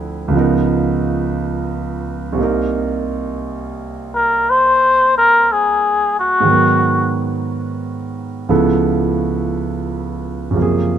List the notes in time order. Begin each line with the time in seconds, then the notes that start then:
Already playing: D2 D3 F3 C4 E4
0.28 C#2 C#3
0.33 F3 B3
0.37 D#4 A#4
2.33 C2 C3
2.38 A#3 D#4
2.43 A#4
4.15 A#4
4.50 C5
5.18 A#4
5.52 G#4
6.19 F#4
6.40 G#2 D#3
6.46 F#3 B3
6.51 A#4
8.49 C#2 C#3 F3 B3 E4 A4
10.51 F#2 C#3
10.55 F3 A#3
10.60 C3 G#4